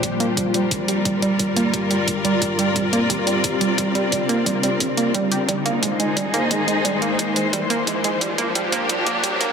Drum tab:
HH |xxxxxxxx|xxxxxxxx|xxxxxxxx|xxxxxxxx|
BD |o-o-o-o-|o-o-o-o-|o-o-o-o-|o-o-o-o-|

HH |xxxxxxxx|xxxxxxxx|xxxxxxxx|
BD |o-o-o-o-|o-o-o-o-|oooooooo|